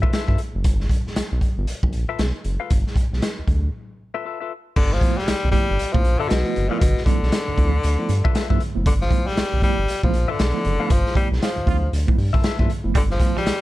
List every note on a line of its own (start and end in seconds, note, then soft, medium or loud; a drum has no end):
0.02 0.11 F4 medium
0.02 0.12 A4 medium
0.02 0.12 B4 medium
0.02 0.12 E5 medium
0.02 kick loud
0.12 0.26 F4 medium
0.12 0.26 A4 medium
0.12 0.26 B4 medium
0.12 0.26 E5 medium
0.12 snare loud
0.12 closed hi-hat medium
0.28 0.37 G2 medium
0.28 0.40 F4 medium
0.28 0.39 A4 medium
0.28 0.39 B4 medium
0.28 0.39 E5 medium
0.28 kick medium
0.38 closed hi-hat medium
0.55 0.64 F#1 medium
0.64 0.87 G1 loud
0.64 kick loud
0.64 closed hi-hat loud
0.80 snare soft
0.89 kick medium
0.89 closed hi-hat medium
1.07 1.10 B1 soft
1.07 snare soft
1.16 1.23 B1 soft
1.16 snare loud
1.16 closed hi-hat loud
1.32 1.41 B1 medium
1.41 kick medium
1.41 closed hi-hat medium
1.58 1.67 G1 medium
1.67 1.74 A#1 soft
1.67 closed hi-hat medium
1.83 2.05 A#1 medium
1.83 kick loud
1.93 closed hi-hat medium
2.09 2.21 F4 medium
2.09 2.20 A4 medium
2.09 2.20 B4 medium
2.09 2.20 E5 medium
2.19 2.33 B1 loud
2.19 snare loud
2.19 closed hi-hat medium
2.44 2.58 F#1 medium
2.44 closed hi-hat medium
2.60 2.72 F4 medium
2.60 2.72 A4 medium
2.60 2.71 B4 medium
2.60 2.71 F5 medium
2.70 2.84 G1 medium
2.70 kick loud
2.70 closed hi-hat loud
2.87 snare soft
2.96 kick medium
2.96 closed hi-hat medium
3.13 3.21 B1 medium
3.13 snare soft
3.22 snare loud
3.22 closed hi-hat loud
3.39 3.43 D2 soft
3.48 3.70 D2 loud
3.48 kick medium
3.48 closed hi-hat medium
4.14 4.24 F4 medium
4.14 4.25 A4 medium
4.14 4.25 B4 medium
4.14 4.25 E5 medium
4.25 4.38 F4 medium
4.25 4.38 A4 medium
4.25 4.38 B4 medium
4.25 4.38 E5 medium
4.40 4.52 F4 medium
4.40 4.52 A4 medium
4.40 4.52 B4 medium
4.40 4.51 E5 medium
4.76 4.99 G1 loud
4.76 4.89 G2 medium
4.76 4.94 D3 loud
4.76 4.89 D3 medium
4.76 kick loud
4.76 crash loud
4.92 5.19 F3 loud
4.92 4.96 B3 soft
4.92 4.96 E4 soft
4.92 snare soft
5.01 5.14 F3 medium
5.01 5.14 A3 medium
5.01 5.14 B3 medium
5.01 5.14 E4 medium
5.01 kick medium
5.01 closed hi-hat medium
5.18 5.22 B1 soft
5.18 5.51 G3 loud
5.18 snare soft
5.27 5.35 B1 soft
5.27 5.34 B3 soft
5.27 5.34 E4 soft
5.27 snare loud
5.27 closed hi-hat loud
5.43 5.52 B1 medium
5.43 5.51 G2 medium
5.43 5.51 D3 medium
5.51 5.65 F3 medium
5.51 5.94 G3 loud
5.51 5.65 A3 medium
5.51 5.65 B3 medium
5.51 5.65 E4 medium
5.51 kick medium
5.51 closed hi-hat medium
5.70 5.78 G1 medium
5.79 5.86 A#1 soft
5.79 closed hi-hat medium
5.93 6.17 A#1 medium
5.93 6.20 F3 medium
5.93 6.02 F3 medium
5.93 6.02 A3 medium
5.93 6.02 B3 medium
5.93 6.02 E4 medium
5.93 kick loud
6.05 closed hi-hat medium
6.18 6.28 G2 medium
6.18 6.30 D3 loud
6.18 6.28 D3 medium
6.18 6.31 F4 medium
6.18 6.31 A4 medium
6.18 6.31 B4 medium
6.18 6.31 E5 medium
6.29 6.44 B1 loud
6.29 6.70 B2 loud
6.29 snare loud
6.29 closed hi-hat loud
6.45 6.53 F3 medium
6.45 6.53 A3 medium
6.45 6.53 B3 medium
6.45 6.53 E4 medium
6.55 6.70 F#1 medium
6.55 6.68 G2 medium
6.55 6.67 D3 medium
6.55 closed hi-hat medium
6.69 6.81 A#2 medium
6.69 6.79 F3 medium
6.69 6.79 A3 medium
6.69 6.79 B3 medium
6.69 6.79 E4 medium
6.69 6.83 F4 medium
6.69 6.83 A4 medium
6.69 6.82 B4 medium
6.69 6.82 F5 medium
6.79 6.95 G1 loud
6.79 6.93 G2 medium
6.79 7.04 B2 loud
6.79 6.93 D3 medium
6.79 kick loud
6.79 closed hi-hat loud
6.96 7.00 B3 soft
6.96 7.00 E4 soft
6.96 snare soft
7.05 8.55 D3 loud
7.05 7.18 F3 medium
7.05 7.19 A3 medium
7.05 7.19 B3 medium
7.05 7.19 E4 medium
7.05 kick loud
7.05 closed hi-hat medium
7.23 7.31 B1 medium
7.23 snare soft
7.32 7.38 B3 soft
7.32 7.38 E4 soft
7.32 snare loud
7.32 closed hi-hat loud
7.47 7.52 D2 soft
7.47 7.55 G2 medium
7.47 7.55 D3 medium
7.58 7.80 D2 loud
7.58 7.70 F3 medium
7.58 7.70 A3 medium
7.58 7.70 B3 medium
7.58 7.70 E4 medium
7.58 kick medium
7.58 closed hi-hat medium
7.83 7.97 D2 loud
7.83 closed hi-hat medium
7.99 8.07 F3 medium
7.99 8.07 A3 medium
7.99 8.07 B3 medium
7.99 8.07 E4 medium
8.09 8.22 G2 loud
8.09 closed hi-hat medium
8.24 8.32 G2 medium
8.24 8.32 D3 medium
8.24 8.33 F4 medium
8.24 8.34 A4 medium
8.24 8.34 B4 medium
8.24 8.34 E5 medium
8.24 kick loud
8.34 8.47 F4 medium
8.34 8.47 A4 medium
8.34 8.47 B4 medium
8.34 8.48 E5 medium
8.34 snare loud
8.34 closed hi-hat loud
8.50 8.59 G2 loud
8.50 8.58 F3 medium
8.50 8.58 A3 medium
8.50 8.58 B3 medium
8.50 8.58 E4 medium
8.50 8.61 F4 medium
8.50 8.62 A4 medium
8.50 8.61 B4 medium
8.50 8.61 E5 medium
8.50 kick medium
8.60 8.72 G2 medium
8.60 8.72 D3 medium
8.60 closed hi-hat medium
8.75 8.85 F#1 medium
8.75 8.83 F3 medium
8.75 8.83 A3 medium
8.75 8.83 B3 medium
8.75 8.84 E4 medium
8.85 9.08 G1 loud
8.85 8.98 G2 medium
8.85 8.98 D3 medium
8.85 8.93 D3 medium
8.85 kick loud
8.85 closed hi-hat loud
9.01 9.28 F3 loud
9.01 9.05 B3 soft
9.01 9.05 E4 soft
9.01 snare soft
9.11 9.23 F3 medium
9.11 9.23 A3 medium
9.11 9.23 B3 medium
9.11 9.23 E4 medium
9.11 kick medium
9.11 closed hi-hat medium
9.27 9.31 B1 soft
9.27 9.62 G3 loud
9.27 snare soft
9.37 9.44 B1 soft
9.37 9.43 B3 soft
9.37 9.43 E4 soft
9.37 snare loud
9.37 closed hi-hat loud
9.52 9.61 B1 medium
9.52 9.60 G2 medium
9.52 9.60 D3 medium
9.62 9.74 F3 medium
9.62 10.01 G3 loud
9.62 9.75 A3 medium
9.62 9.75 B3 medium
9.62 9.75 E4 medium
9.62 kick medium
9.62 closed hi-hat medium
9.79 9.87 G1 medium
9.88 9.95 A#1 medium
9.88 closed hi-hat medium
10.03 10.26 A#1 loud
10.03 10.11 F3 medium
10.03 10.31 F3 medium
10.03 10.11 A3 medium
10.03 10.12 B3 medium
10.03 10.12 E4 medium
10.03 kick loud
10.14 closed hi-hat medium
10.28 10.37 G2 medium
10.28 10.37 D3 medium
10.28 10.92 D3 loud
10.28 10.40 F4 medium
10.28 10.40 A4 medium
10.28 10.40 B4 medium
10.28 10.40 E5 medium
10.39 10.53 B1 medium
10.39 snare loud
10.39 closed hi-hat loud
10.54 10.62 F3 medium
10.54 10.62 A3 medium
10.54 10.62 B3 medium
10.54 10.62 E4 medium
10.64 10.78 F#1 loud
10.64 10.77 G2 medium
10.64 10.76 D3 medium
10.64 closed hi-hat medium
10.80 10.88 F3 medium
10.80 10.88 A3 medium
10.80 10.88 B3 medium
10.80 10.88 E4 medium
10.80 10.91 F4 medium
10.80 10.92 A4 medium
10.80 10.91 B4 medium
10.80 10.91 F5 medium
10.90 11.04 G1 loud
10.90 11.02 G2 medium
10.90 11.02 D3 medium
10.90 11.16 F3 loud
10.90 kick loud
10.90 closed hi-hat loud
11.05 11.09 B3 soft
11.05 11.09 E4 soft
11.05 snare soft
11.15 11.27 F3 medium
11.15 11.28 G3 medium
11.15 11.27 A3 medium
11.15 11.28 B3 medium
11.15 11.28 E4 medium
11.15 kick medium
11.15 closed hi-hat medium
11.31 11.40 B1 medium
11.31 snare soft
11.41 11.89 F3 medium
11.41 11.47 B3 soft
11.41 11.47 E4 soft
11.41 11.51 F4 loud
11.41 snare loud
11.41 closed hi-hat loud
11.56 11.61 D2 soft
11.56 11.64 G2 medium
11.56 11.65 D3 medium
11.66 11.89 D2 loud
11.66 11.79 F3 medium
11.66 11.79 A3 medium
11.66 11.79 B3 medium
11.66 11.79 E4 medium
11.66 11.77 F4 loud
11.66 kick medium
11.66 closed hi-hat medium
11.93 12.06 D2 medium
11.93 closed hi-hat medium
12.07 12.16 F3 medium
12.07 12.16 A3 medium
12.07 12.16 B3 medium
12.07 12.16 E4 medium
12.07 kick loud
12.18 12.31 G2 loud
12.18 open hi-hat medium
12.33 12.41 G2 medium
12.33 12.41 D3 medium
12.33 12.43 F4 medium
12.33 12.44 A4 medium
12.33 12.44 B4 medium
12.33 12.44 E5 medium
12.33 kick loud
12.44 12.57 F4 medium
12.44 12.57 A4 medium
12.44 12.57 B4 medium
12.44 12.57 E5 medium
12.44 snare loud
12.44 closed hi-hat loud
12.58 12.68 G2 loud
12.58 12.67 F3 medium
12.58 12.67 A3 medium
12.58 12.67 B3 medium
12.58 12.67 E4 medium
12.58 12.71 F4 medium
12.58 12.71 A4 medium
12.58 12.71 B4 medium
12.58 12.70 E5 medium
12.58 kick medium
12.68 12.81 G2 medium
12.68 12.81 D3 medium
12.68 closed hi-hat medium
12.84 12.93 F#1 medium
12.84 12.92 F3 medium
12.84 12.92 A3 medium
12.84 12.92 B3 medium
12.84 12.92 E4 medium
12.94 13.17 G1 loud
12.94 13.07 G2 medium
12.94 13.07 D3 medium
12.94 13.03 D3 loud
12.94 13.05 G3 medium
12.94 kick loud
12.94 closed hi-hat loud
13.10 13.35 F3 loud
13.10 13.14 B3 soft
13.10 13.14 E4 soft
13.10 snare soft
13.19 13.32 F3 medium
13.19 13.32 A3 medium
13.19 13.32 B3 medium
13.19 13.33 E4 medium
13.19 muted clean electric guitar stroke soft
13.19 kick medium
13.19 closed hi-hat medium
13.36 13.40 B1 soft
13.36 13.43 F3 medium
13.36 13.61 G3 loud
13.36 snare soft
13.45 13.52 B1 medium
13.45 13.52 B3 soft
13.45 13.52 E4 soft
13.45 snare loud
13.45 closed hi-hat loud